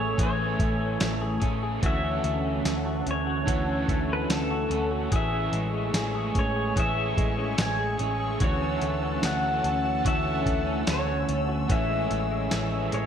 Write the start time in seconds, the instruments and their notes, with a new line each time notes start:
Already playing: picked electric bass A1, overdriven electric guitar E3 A3 C#4 G#4, clean electric guitar E3 A3 C#4, analog synth pad A3 G#5 C#6 E6, pedal steel guitar C#5
0.00 clean electric guitar G#4
0.17 picked electric bass A1, overdriven electric guitar A2 E3 A3 C#4 G#4, clean electric guitar E3 G#4, kick, closed hi-hat
0.23 pedal steel guitar C#5
0.39 clean electric guitar C#4
0.59 picked electric bass A1, clean electric guitar A3, kick, closed hi-hat
0.81 clean electric guitar C#4
1.00 picked electric bass A1, clean electric guitar A3, snare, closed hi-hat, tambourine
1.21 clean electric guitar G#4
1.40 picked electric bass A1, clean electric guitar C#4, overdriven electric guitar C#4 G#4, kick, closed hi-hat
1.45 overdriven electric guitar A3
1.63 clean electric guitar G#4
1.81 picked electric bass D2, overdriven electric guitar D3 E3, clean electric guitar E3 F#4, analog synth pad C#4 F#5 A5, kick, closed hi-hat
1.85 overdriven electric guitar A3 C#4 F#4, pedal steel guitar E5
2.03 clean electric guitar C#4
2.24 picked electric bass D2, clean electric guitar A3, closed hi-hat
2.44 clean electric guitar C#4
2.65 picked electric bass D2, clean electric guitar A3, snare, closed hi-hat, tambourine
2.86 clean electric guitar F#4
3.07 picked electric bass D2, clean electric guitar C#4, closed hi-hat
3.11 pedal steel guitar C#5
3.27 clean electric guitar F#4
3.46 picked electric bass D2, overdriven electric guitar D3 E3 A3 C#4 F#4, clean electric guitar E3 F#4, kick, closed hi-hat
3.68 clean electric guitar C#4
3.88 picked electric bass D2, clean electric guitar A3, kick, closed hi-hat
4.09 clean electric guitar C#4, pedal steel guitar B4
4.29 picked electric bass D2, clean electric guitar A3, pedal steel guitar A4, snare, closed hi-hat, tambourine
4.51 clean electric guitar F#4
4.69 picked electric bass D2, clean electric guitar C#4, overdriven electric guitar C#4 F#4, closed hi-hat
4.74 overdriven electric guitar A3
4.91 clean electric guitar F#4
5.11 picked electric bass A1, overdriven electric guitar A2 E3 A3 C#4 G#4, clean electric guitar E3 G#4, analog synth pad G#4 G#5 C#6, kick, closed hi-hat
5.16 pedal steel guitar E5
5.32 clean electric guitar C#4
5.53 picked electric bass A1, clean electric guitar G#3, closed hi-hat
5.74 clean electric guitar C#4
5.93 picked electric bass A1, overdriven electric guitar E3 A3 C#4, clean electric guitar G#3, snare, closed hi-hat, tambourine
5.97 overdriven electric guitar G#4
6.15 clean electric guitar G#4
6.35 picked electric bass A1, clean electric guitar C#4, pedal steel guitar C#5, kick, closed hi-hat
6.56 clean electric guitar G#4
6.76 picked electric bass A1, overdriven electric guitar A2 E3 A3 C#4 G#4, clean electric guitar E3 G#4, pedal steel guitar E5, kick, closed hi-hat
6.97 clean electric guitar C#4
7.17 picked electric bass A1, clean electric guitar G#3, kick, closed hi-hat
7.38 clean electric guitar C#4
7.58 picked electric bass A1, clean electric guitar G#3, pedal steel guitar G#5, snare, closed hi-hat, tambourine
7.79 clean electric guitar G#4
7.98 picked electric bass A1, clean electric guitar C#4, overdriven electric guitar C#4 G#4, closed hi-hat
8.02 overdriven electric guitar A3
8.20 clean electric guitar G#4
8.40 picked electric bass D2, overdriven electric guitar D3 E3 A3 C#4 F#4, clean electric guitar E3 F#4, analog synth pad C#4 F#5 A5 E6, kick, closed hi-hat
8.44 pedal steel guitar C#5
8.62 clean electric guitar C#4
8.82 picked electric bass D2, clean electric guitar A3, closed hi-hat
9.02 clean electric guitar C#4
9.21 picked electric bass D2, overdriven electric guitar E3 A3 C#4, clean electric guitar A3, snare, closed hi-hat, tambourine
9.25 overdriven electric guitar F#4, pedal steel guitar F#5
9.43 clean electric guitar F#4
9.64 picked electric bass D2, clean electric guitar C#4, closed hi-hat
9.85 clean electric guitar F#4
10.03 picked electric bass D2, overdriven electric guitar D3 E3, clean electric guitar E3 F#4, kick, closed hi-hat
10.07 overdriven electric guitar A3 C#4 F#4, pedal steel guitar E5
10.25 clean electric guitar C#4
10.46 picked electric bass D2, clean electric guitar A3, kick, closed hi-hat
10.66 clean electric guitar C#4
10.87 picked electric bass D2, clean electric guitar A3, pedal steel guitar C#5, snare, closed hi-hat, tambourine
11.08 clean electric guitar F#4
11.28 picked electric bass D2, clean electric guitar C#4, closed hi-hat
11.49 clean electric guitar F#4
11.68 picked electric bass A1, overdriven electric guitar A2 E3 A3 C#4 G#4, clean electric guitar E3 C#4, analog synth pad C#5 E5 G#5, pedal steel guitar E5, kick, closed hi-hat
11.90 clean electric guitar G#3
12.10 picked electric bass A1, clean electric guitar E3, closed hi-hat
12.31 clean electric guitar G#3
12.50 picked electric bass A1, overdriven electric guitar E3 A3 C#4, clean electric guitar E3, snare, closed hi-hat, tambourine
12.55 overdriven electric guitar G#4
12.72 clean electric guitar C#4
12.92 picked electric bass A1, clean electric guitar G#3, pedal steel guitar C#5, closed hi-hat